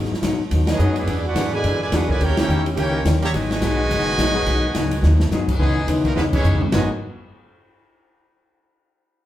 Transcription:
Already playing: G#2 F#3 B3 D#4
0.04 snare
0.11 muted upright bass stroke, snare
0.22 B1 G#2 F#3 B3 D#4, snare, hi-hat pedal, ride
0.39 muted upright bass stroke
0.51 D#2 G#2 F#3 B3 D#4, ride
0.67 F#3 B3 D#4 F#4 G#4 D#5, snare, ride
0.77 F#2 G#2 F#3 B3 D#4 G#4, hi-hat pedal
0.81 D#4
0.95 G#3 B3 D4 E4 G#4 D5, ride
1.07 E2 E3 B3 D4 G#4, ride
1.25 B3 D4 E4 F#4 B4 D5 F#5
1.35 G#2 E3 B3 D4 G#4, snare, hi-hat pedal, ride
1.52 B2 D3 E3 G#3 B3 D4 E4 G#4 B4 D5 G#5
1.64 F#2 E3 B3 D4 G#4, ride
1.83 B2 D3 G#3 E4 B4 D5 G#5
1.92 E2 E3 B3 D4 F#4 G#4 B4 F#5, snare, hi-hat pedal, ride
2.07 B2 D3 E3 G#3 C#4 D#4 A#4, kick
2.11 E4 B4 D5 G#5
2.20 D#2 D#3 A#3 C#4 E4 G4 A#4 C#5 G5, ride
2.37 A#3 C#4 E4 G4 A#4 C#5 G5, snare, ride
2.46 E2 D#3 E3 C#4 D#4 E4 G4, hi-hat pedal
2.51 G4
2.66 ride
2.76 C#2 D#3 A#3 C#4 E4 G4 A#4 C#5 G5, ride
2.80 G4
2.91 E3 C#4 D#4 A#4
3.05 D#2 D#3 C#4 E4 G4, snare, hi-hat pedal, ride
3.22 C#3 G3 A#3 G4 C#5 E5 A#5, ride
3.33 G#1 G#2 B2 D#3 F#3 G#3 B3 D#4 F#4 B4 D#5 G#5, ride
3.51 snare, ride
3.61 B1 G#2 F#3 B3 D#4, snare, hi-hat pedal, ride
3.89 F#1 G#2 F#3 B3 D#4, ride
4.18 A#1 G#2 F#3 B3 D#4, snare, hi-hat pedal, ride
4.35 F#3 B3 D#4 G#4
4.46 B1 G#2 F#3 B3 D#4, ride
4.75 C#2 G#2 F#3 B3 D#4, snare, hi-hat pedal, ride
4.91 ride
5.03 D#2 G#2 F#3 B3 D#4, snare
5.20 snare
5.30 F#2 G#2 F#3 B3 D#4 G#4, snare, hi-hat pedal
5.48 kick, crash
5.58 C#2 B2 C#3 E3 G#3 B3 C#4 D#4 E4 G#4 B4
5.62 D#4
5.87 D#2 C#3 E3 G#3 B3 C#4 D#4 E4 B4, hi-hat pedal, ride
6.04 F#3 A#3 B3 D#4 A#4, kick, ride
6.14 E2 C#3 E3 G#3 B3 D#4 E4 B4, snare
6.19 D#4
6.30 E3 G#3 B3 C#4 E4 G#4 C#5, kick, crash
6.44 F#2 C#3 E3 B3 D#4, hi-hat pedal
6.61 muted upright bass stroke, floor tom
6.72 G#1 G#2 D#3 F#3 G#3 B3 D#4 F#4 A#4 B4 D#5 G#5, snare, ride bell

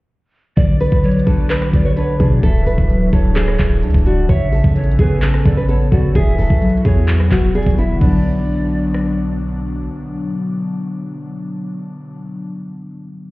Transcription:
0.57 B1 D3 B3 F#4 D5, kick, closed hi-hat
0.80 D3 B4, open hi-hat
0.92 B1, kick
1.04 F#3 C#5, closed hi-hat
1.11 closed hi-hat
1.19 closed hi-hat
1.27 B1 D4 A4 B4, kick, closed hi-hat
1.50 D3 B4, clap, closed hi-hat
1.62 cross-stick, closed hi-hat
1.73 B1 D3 D5, kick, closed hi-hat
1.85 C#5
1.97 D4 B4 C#5, closed hi-hat
2.20 B2 D4 G#4 D5, kick, closed hi-hat
2.43 D1 E3 D4 E4 A4 E5, kick, closed hi-hat
2.66 D1 E3 B4, open hi-hat
2.78 D1, kick
2.90 F#3, closed hi-hat
3.13 D1 D4 A4 C#5, kick, closed hi-hat
3.36 E3 G#4, clap, closed hi-hat
3.48 cross-stick
3.59 D1 E3, kick, clap, closed hi-hat
3.83 D2 D4, closed hi-hat
3.91 D1, kick, closed hi-hat
3.98 closed hi-hat
4.06 D4 F#4 D5, closed hi-hat
4.29 A1 C#3 B3 C#4 A4 C#5 E5, kick, closed hi-hat
4.52 C#3 A4, open hi-hat
4.64 A1, kick
4.76 E3 C#5, closed hi-hat
4.84 closed hi-hat
4.91 closed hi-hat
4.99 A1 B3 G#4 B4, kick, closed hi-hat
5.22 C#3 A4, clap, closed hi-hat
5.34 cross-stick, closed hi-hat
5.45 A1 C#3 D5, kick, closed hi-hat
5.57 B4
5.69 B3 A4 C#5, closed hi-hat
5.92 A1 B3 F#4 D5, kick, closed hi-hat
6.15 E1 E3 F#3 E4 F#4 G#4 E5, kick, closed hi-hat
6.38 E1 E3 A4, open hi-hat
6.50 B1, kick
6.62 F#3, closed hi-hat
6.70 closed hi-hat
6.77 closed hi-hat
6.85 E2 B3 G#4 C#5, kick, closed hi-hat
7.08 E3, clap, closed hi-hat
7.20 cross-stick
7.32 E1 E3 F#4, kick, clap, closed hi-hat
7.55 B3 G#4 D5, closed hi-hat
7.63 E1, kick, closed hi-hat
7.70 closed hi-hat
7.78 B3 E4 E5, closed hi-hat
7.95 D3
7.99 B1 B2 F#3 B3 D4 D5, kick, crash
8.07 D4
8.94 cross-stick

